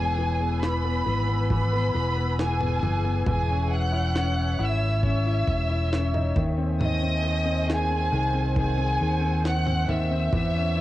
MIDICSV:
0, 0, Header, 1, 7, 480
1, 0, Start_track
1, 0, Tempo, 882353
1, 1778, Time_signature, 4, 2, 24, 8
1, 5880, End_track
2, 0, Start_track
2, 0, Title_t, "Violin section"
2, 0, Program_c, 0, 48
2, 0, Note_on_c, 0, 68, 81
2, 0, Note_on_c, 0, 80, 101
2, 342, Note_off_c, 0, 80, 0
2, 344, Note_off_c, 0, 68, 0
2, 347, Note_on_c, 0, 83, 95
2, 351, Note_on_c, 0, 71, 71
2, 821, Note_off_c, 0, 83, 0
2, 825, Note_off_c, 0, 71, 0
2, 828, Note_on_c, 0, 83, 99
2, 830, Note_on_c, 0, 71, 79
2, 1281, Note_off_c, 0, 83, 0
2, 1283, Note_off_c, 0, 71, 0
2, 1309, Note_on_c, 0, 80, 93
2, 1312, Note_on_c, 0, 68, 73
2, 1779, Note_off_c, 0, 80, 0
2, 1785, Note_off_c, 0, 68, 0
2, 1785, Note_on_c, 0, 80, 94
2, 1791, Note_on_c, 0, 68, 76
2, 2005, Note_off_c, 0, 80, 0
2, 2008, Note_off_c, 0, 68, 0
2, 2023, Note_on_c, 0, 78, 90
2, 2027, Note_on_c, 0, 90, 75
2, 2501, Note_off_c, 0, 78, 0
2, 2503, Note_off_c, 0, 90, 0
2, 2506, Note_on_c, 0, 76, 77
2, 2511, Note_on_c, 0, 88, 64
2, 2741, Note_off_c, 0, 76, 0
2, 2745, Note_off_c, 0, 88, 0
2, 2747, Note_on_c, 0, 76, 87
2, 2753, Note_on_c, 0, 88, 66
2, 3441, Note_off_c, 0, 76, 0
2, 3444, Note_off_c, 0, 88, 0
2, 3713, Note_on_c, 0, 87, 83
2, 3715, Note_on_c, 0, 75, 104
2, 4164, Note_off_c, 0, 87, 0
2, 4165, Note_off_c, 0, 75, 0
2, 4189, Note_on_c, 0, 68, 85
2, 4190, Note_on_c, 0, 80, 106
2, 4663, Note_off_c, 0, 68, 0
2, 4663, Note_off_c, 0, 80, 0
2, 4669, Note_on_c, 0, 80, 111
2, 4671, Note_on_c, 0, 68, 91
2, 5122, Note_off_c, 0, 80, 0
2, 5123, Note_off_c, 0, 68, 0
2, 5148, Note_on_c, 0, 78, 96
2, 5152, Note_on_c, 0, 90, 86
2, 5383, Note_off_c, 0, 78, 0
2, 5385, Note_off_c, 0, 90, 0
2, 5389, Note_on_c, 0, 76, 98
2, 5390, Note_on_c, 0, 88, 69
2, 5880, Note_off_c, 0, 76, 0
2, 5880, Note_off_c, 0, 88, 0
2, 5880, End_track
3, 0, Start_track
3, 0, Title_t, "Ambient pad"
3, 0, Program_c, 1, 92
3, 0, Note_on_c, 1, 71, 75
3, 0, Note_on_c, 1, 80, 76
3, 0, Note_on_c, 1, 88, 84
3, 1758, Note_off_c, 1, 80, 0
3, 1759, Note_off_c, 1, 71, 0
3, 1760, Note_off_c, 1, 88, 0
3, 1780, Note_on_c, 1, 73, 81
3, 1781, Note_on_c, 1, 76, 74
3, 3443, Note_off_c, 1, 73, 0
3, 3443, Note_off_c, 1, 76, 0
3, 3464, Note_on_c, 1, 80, 72
3, 3465, Note_on_c, 1, 72, 76
3, 4412, Note_off_c, 1, 80, 0
3, 4419, Note_on_c, 1, 78, 71
3, 5600, Note_off_c, 1, 72, 0
3, 5607, Note_off_c, 1, 78, 0
3, 5620, Note_on_c, 1, 73, 78
3, 5620, Note_on_c, 1, 80, 73
3, 5880, Note_off_c, 1, 73, 0
3, 5880, Note_off_c, 1, 80, 0
3, 5880, End_track
4, 0, Start_track
4, 0, Title_t, "Cello section"
4, 0, Program_c, 2, 48
4, 5858, Note_on_c, 2, 59, 82
4, 5880, Note_off_c, 2, 59, 0
4, 5880, End_track
5, 0, Start_track
5, 0, Title_t, "Grand piano"
5, 0, Program_c, 3, 0
5, 0, Control_c, 3, 64, 127
5, 0, Note_on_c, 3, 52, 66
5, 0, Note_on_c, 3, 59, 52
5, 93, Note_off_c, 3, 52, 0
5, 101, Note_on_c, 3, 52, 55
5, 212, Note_off_c, 3, 59, 0
5, 221, Note_on_c, 3, 59, 54
5, 332, Note_off_c, 3, 52, 0
5, 340, Note_on_c, 3, 52, 54
5, 452, Note_off_c, 3, 59, 0
5, 460, Note_on_c, 3, 59, 56
5, 569, Note_off_c, 3, 52, 0
5, 577, Note_on_c, 3, 52, 53
5, 693, Note_off_c, 3, 59, 0
5, 701, Note_on_c, 3, 59, 50
5, 811, Note_off_c, 3, 52, 0
5, 820, Note_on_c, 3, 52, 64
5, 933, Note_off_c, 3, 59, 0
5, 941, Note_on_c, 3, 59, 53
5, 1048, Note_off_c, 3, 52, 0
5, 1057, Note_on_c, 3, 52, 51
5, 1172, Note_off_c, 3, 59, 0
5, 1180, Note_on_c, 3, 59, 53
5, 1291, Note_off_c, 3, 52, 0
5, 1299, Note_on_c, 3, 52, 52
5, 1408, Note_off_c, 3, 59, 0
5, 1416, Note_on_c, 3, 59, 54
5, 1529, Note_off_c, 3, 52, 0
5, 1537, Note_on_c, 3, 52, 54
5, 1648, Note_off_c, 3, 59, 0
5, 1656, Note_on_c, 3, 59, 53
5, 1769, Note_off_c, 3, 52, 0
5, 1774, Note_off_c, 3, 59, 0
5, 1777, Note_on_c, 3, 52, 67
5, 1786, Control_c, 3, 64, 0
5, 1870, Control_c, 3, 64, 127
5, 1898, Note_on_c, 3, 61, 51
5, 2135, Note_on_c, 3, 64, 57
5, 2251, Note_off_c, 3, 61, 0
5, 2260, Note_on_c, 3, 61, 54
5, 2488, Note_off_c, 3, 64, 0
5, 2496, Note_on_c, 3, 64, 58
5, 2729, Note_off_c, 3, 61, 0
5, 2737, Note_on_c, 3, 61, 75
5, 2854, Note_off_c, 3, 64, 0
5, 2862, Note_on_c, 3, 64, 50
5, 3091, Note_off_c, 3, 64, 0
5, 3099, Note_on_c, 3, 64, 52
5, 3212, Note_off_c, 3, 61, 0
5, 3220, Note_on_c, 3, 61, 57
5, 3341, Note_on_c, 3, 63, 58
5, 3436, Note_off_c, 3, 52, 0
5, 3448, Note_off_c, 3, 64, 0
5, 3452, Note_off_c, 3, 61, 0
5, 3456, Note_off_c, 3, 63, 0
5, 3462, Note_on_c, 3, 51, 67
5, 3466, Control_c, 3, 64, 0
5, 3553, Control_c, 3, 64, 127
5, 3578, Note_on_c, 3, 60, 53
5, 3689, Note_off_c, 3, 51, 0
5, 3698, Note_on_c, 3, 51, 64
5, 3812, Note_off_c, 3, 60, 0
5, 3820, Note_on_c, 3, 60, 56
5, 3928, Note_off_c, 3, 51, 0
5, 3936, Note_on_c, 3, 51, 57
5, 4046, Note_off_c, 3, 60, 0
5, 4054, Note_on_c, 3, 60, 55
5, 4173, Note_off_c, 3, 51, 0
5, 4181, Note_on_c, 3, 51, 58
5, 4292, Note_off_c, 3, 60, 0
5, 4300, Note_on_c, 3, 60, 55
5, 4410, Note_off_c, 3, 51, 0
5, 4419, Note_on_c, 3, 51, 67
5, 4528, Note_off_c, 3, 60, 0
5, 4536, Note_on_c, 3, 60, 52
5, 4646, Note_off_c, 3, 51, 0
5, 4654, Note_on_c, 3, 51, 57
5, 4766, Note_off_c, 3, 60, 0
5, 4774, Note_on_c, 3, 60, 55
5, 4890, Note_off_c, 3, 51, 0
5, 4898, Note_on_c, 3, 51, 55
5, 5004, Note_off_c, 3, 60, 0
5, 5013, Note_on_c, 3, 60, 52
5, 5128, Note_off_c, 3, 51, 0
5, 5136, Note_on_c, 3, 51, 59
5, 5249, Note_off_c, 3, 60, 0
5, 5257, Note_on_c, 3, 60, 54
5, 5369, Note_off_c, 3, 51, 0
5, 5377, Note_on_c, 3, 51, 68
5, 5491, Note_off_c, 3, 60, 0
5, 5499, Note_on_c, 3, 60, 52
5, 5610, Note_off_c, 3, 51, 0
5, 5615, Note_off_c, 3, 60, 0
5, 5618, Note_on_c, 3, 52, 68
5, 5625, Control_c, 3, 64, 0
5, 5711, Control_c, 3, 64, 127
5, 5736, Note_on_c, 3, 61, 54
5, 5856, Note_on_c, 3, 64, 57
5, 5880, Note_off_c, 3, 52, 0
5, 5880, Note_off_c, 3, 61, 0
5, 5880, Note_off_c, 3, 64, 0
5, 5880, End_track
6, 0, Start_track
6, 0, Title_t, "Fingered electric bass"
6, 0, Program_c, 4, 33
6, 0, Note_on_c, 4, 28, 103
6, 556, Note_off_c, 4, 28, 0
6, 578, Note_on_c, 4, 32, 85
6, 1036, Note_off_c, 4, 32, 0
6, 1059, Note_on_c, 4, 28, 88
6, 1517, Note_off_c, 4, 28, 0
6, 1536, Note_on_c, 4, 30, 88
6, 1761, Note_off_c, 4, 30, 0
6, 1778, Note_on_c, 4, 28, 95
6, 2476, Note_off_c, 4, 28, 0
6, 2498, Note_on_c, 4, 32, 96
6, 2956, Note_off_c, 4, 32, 0
6, 2979, Note_on_c, 4, 28, 97
6, 3437, Note_off_c, 4, 28, 0
6, 3460, Note_on_c, 4, 39, 94
6, 4397, Note_off_c, 4, 39, 0
6, 4420, Note_on_c, 4, 36, 93
6, 4877, Note_off_c, 4, 36, 0
6, 4902, Note_on_c, 4, 39, 96
6, 5358, Note_off_c, 4, 39, 0
6, 5381, Note_on_c, 4, 39, 100
6, 5603, Note_off_c, 4, 39, 0
6, 5619, Note_on_c, 4, 40, 104
6, 5880, Note_off_c, 4, 40, 0
6, 5880, End_track
7, 0, Start_track
7, 0, Title_t, "Drums"
7, 342, Note_on_c, 9, 38, 107
7, 397, Note_off_c, 9, 38, 0
7, 816, Note_on_c, 9, 36, 83
7, 816, Note_on_c, 9, 43, 63
7, 870, Note_off_c, 9, 43, 0
7, 871, Note_off_c, 9, 36, 0
7, 1301, Note_on_c, 9, 38, 107
7, 1355, Note_off_c, 9, 38, 0
7, 1417, Note_on_c, 9, 43, 69
7, 1471, Note_off_c, 9, 43, 0
7, 1538, Note_on_c, 9, 43, 66
7, 1592, Note_off_c, 9, 43, 0
7, 1776, Note_on_c, 9, 43, 121
7, 1777, Note_on_c, 9, 36, 118
7, 1831, Note_off_c, 9, 36, 0
7, 1831, Note_off_c, 9, 43, 0
7, 2261, Note_on_c, 9, 38, 104
7, 2316, Note_off_c, 9, 38, 0
7, 2737, Note_on_c, 9, 36, 80
7, 2737, Note_on_c, 9, 43, 58
7, 2791, Note_off_c, 9, 36, 0
7, 2791, Note_off_c, 9, 43, 0
7, 2979, Note_on_c, 9, 36, 95
7, 3033, Note_off_c, 9, 36, 0
7, 3225, Note_on_c, 9, 38, 111
7, 3279, Note_off_c, 9, 38, 0
7, 3341, Note_on_c, 9, 43, 64
7, 3395, Note_off_c, 9, 43, 0
7, 3459, Note_on_c, 9, 36, 109
7, 3462, Note_on_c, 9, 43, 74
7, 3514, Note_off_c, 9, 36, 0
7, 3517, Note_off_c, 9, 43, 0
7, 3703, Note_on_c, 9, 43, 121
7, 3757, Note_off_c, 9, 43, 0
7, 4187, Note_on_c, 9, 38, 112
7, 4242, Note_off_c, 9, 38, 0
7, 4658, Note_on_c, 9, 36, 88
7, 4658, Note_on_c, 9, 43, 63
7, 4713, Note_off_c, 9, 36, 0
7, 4713, Note_off_c, 9, 43, 0
7, 5142, Note_on_c, 9, 38, 114
7, 5197, Note_off_c, 9, 38, 0
7, 5259, Note_on_c, 9, 43, 66
7, 5314, Note_off_c, 9, 43, 0
7, 5380, Note_on_c, 9, 43, 69
7, 5435, Note_off_c, 9, 43, 0
7, 5618, Note_on_c, 9, 43, 118
7, 5619, Note_on_c, 9, 36, 113
7, 5673, Note_off_c, 9, 36, 0
7, 5673, Note_off_c, 9, 43, 0
7, 5880, End_track
0, 0, End_of_file